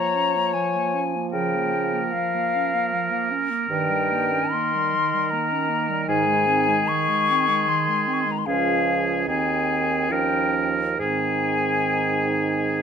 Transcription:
0.00 3.43 F3 soft
0.00 0.17 A#3 soft
0.00 1.03 C#5 soft
0.00 0.55 A#5 soft
0.15 0.38 C#4 soft
0.36 0.56 A#3 soft
0.54 0.77 F3 soft
0.54 1.31 G#5 soft
0.75 0.96 A#3 soft
0.95 1.18 C#4 soft
1.16 1.34 A#3 soft
1.31 2.00 C#3 soft
1.31 1.56 F3 soft
1.31 6.05 A#4 soft
1.31 2.13 G5 soft
1.54 1.76 A#3 soft
1.75 1.95 C#4 soft
1.93 2.15 A#3 soft
2.12 2.36 F3 soft
2.12 3.30 F5 soft
2.35 2.57 A#3 soft
2.56 2.76 C#4 soft
2.75 2.95 A#3 soft
2.93 3.12 F3 soft
3.11 3.33 A#3 soft
3.32 3.52 C#4 soft
3.51 3.68 A#3 soft
3.69 4.40 G2 soft
3.69 3.91 D#3 soft
3.69 8.44 D#3 soft
3.69 4.53 G5 soft
3.90 4.13 G3 soft
4.11 4.34 A#3 soft
4.32 4.55 C#4 soft
4.51 4.76 A#3 soft
4.51 5.32 C6 soft
4.75 4.96 G3 soft
4.95 5.16 D#3 soft
5.14 5.34 G3 soft
5.31 5.53 A#3 soft
5.31 6.06 A#5 soft
5.52 5.71 C#4 soft
5.70 5.91 A#3 soft
5.89 6.06 G3 soft
6.07 6.77 G#2 soft
6.07 6.28 D#3 soft
6.07 8.30 G#4 soft
6.07 6.89 G#5 medium
6.27 6.48 G#3 soft
6.47 6.70 C4 soft
6.68 6.91 G#3 soft
6.88 7.10 D#3 soft
6.88 7.70 C#6 medium
7.09 7.32 G#3 soft
7.30 7.50 C4 soft
7.48 7.69 G#3 soft
7.67 7.90 D#3 soft
7.67 8.15 C6 soft
7.89 8.09 G#3 soft
8.07 8.27 C4 soft
8.13 8.23 C#6 soft
8.21 8.33 C6 soft
8.26 8.46 G#3 soft
8.32 8.40 A#5 soft
8.38 8.48 C6 soft
8.46 9.24 C#2 soft
8.46 9.29 F3 soft
8.46 9.30 C#4 soft
8.46 9.24 G#4 soft
8.46 9.27 F5 medium
9.27 10.09 D#2 soft
9.27 10.12 D#3 soft
9.27 10.13 C4 soft
9.27 10.14 G#4 soft
9.27 10.11 G#5 soft
10.10 11.01 D#2 soft
10.10 10.98 F3 soft
10.10 10.81 C#4 soft
10.10 10.99 A#4 soft
10.10 10.68 G5 soft
10.98 12.82 G#2 soft
10.98 12.82 D#3 soft
10.98 12.82 C4 soft
10.98 12.82 G#4 soft
10.98 12.74 G#5 soft

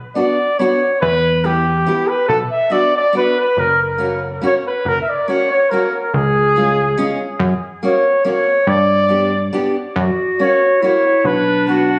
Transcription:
0.15 0.36 B3 medium
0.15 0.36 D4 medium
0.15 0.37 F#4 medium
0.15 0.60 D5 medium
0.59 0.79 B3 medium
0.59 0.80 D4 medium
0.59 0.80 F#4 medium
0.59 1.01 C#5 medium
1.01 1.85 E2 loud
1.01 1.47 B4 loud
1.44 1.64 B3 soft
1.44 1.65 E4 medium
1.44 2.10 G4 medium
1.44 1.65 G4 medium
1.86 2.07 B3 medium
1.86 2.07 E4 medium
1.86 2.08 G4 medium
2.09 2.28 B4 medium
2.29 2.43 B1 loud
2.29 2.39 A4 loud
2.51 2.74 E5 medium
2.70 2.91 B3 medium
2.70 2.91 D4 medium
2.70 2.91 F#4 medium
2.70 2.94 D5 loud
2.97 3.14 D5 loud
3.13 3.33 B3 medium
3.13 3.34 D4 medium
3.13 3.34 F#4 medium
3.17 3.36 B4 loud
3.40 3.61 B4 medium
3.57 4.41 F#1 medium
3.57 3.80 A#4 loud
3.83 4.16 A#4 medium
3.98 4.19 A#3 soft
3.98 4.19 C#4 medium
3.98 4.20 F#4 medium
4.42 4.62 A#3 medium
4.42 4.63 C#4 soft
4.42 4.63 F#4 medium
4.42 4.55 C#5 loud
4.67 4.89 B4 medium
4.85 5.00 F#1 loud
4.85 5.01 A#4 loud
5.02 5.11 E5 medium
5.09 5.30 D5 medium
5.28 5.48 A#3 soft
5.28 5.49 C#4 medium
5.28 5.49 F#4 medium
5.28 5.51 C#5 medium
5.51 5.72 C#5 loud
5.70 5.91 A#3 medium
5.70 5.92 C#4 medium
5.70 5.92 F#4 medium
5.70 5.91 A#4 medium
5.92 6.16 A#4 medium
6.14 6.96 C#2 loud
6.14 7.21 G#4 loud
6.56 6.76 G#3 medium
6.56 6.76 C#4 medium
6.56 6.77 F4 medium
6.97 7.18 G#3 medium
6.97 7.18 C#4 medium
6.97 7.19 F4 medium
7.40 7.54 F#2 loud
7.83 8.03 A#3 medium
7.83 8.04 C#4 medium
7.83 8.04 F#4 medium
7.83 8.24 C#5 medium
8.25 8.45 A#3 medium
8.25 8.45 C#4 medium
8.25 8.46 F#4 medium
8.25 8.70 C#5 medium
8.67 9.51 G2 loud
8.67 9.55 D5 loud
9.09 9.30 B3 medium
9.09 9.31 D4 medium
9.09 9.31 G4 medium
9.53 9.74 B3 medium
9.53 9.74 D4 medium
9.53 9.75 G4 medium
9.96 10.11 F#2 loud
9.96 10.82 F#4 medium
10.39 10.60 A#3 medium
10.39 10.60 C#4 medium
10.39 10.61 F#4 medium
10.39 10.80 C#5 medium
10.81 11.02 A#3 medium
10.81 11.03 C#4 medium
10.81 11.27 E4 medium
10.81 11.03 F#4 medium
10.81 11.28 C#5 loud
11.24 11.99 B1 medium
11.24 11.99 D4 loud
11.24 11.68 B4 loud
11.67 11.87 B3 medium
11.67 11.88 D4 medium
11.67 11.88 F#4 medium
11.67 11.99 F#4 medium

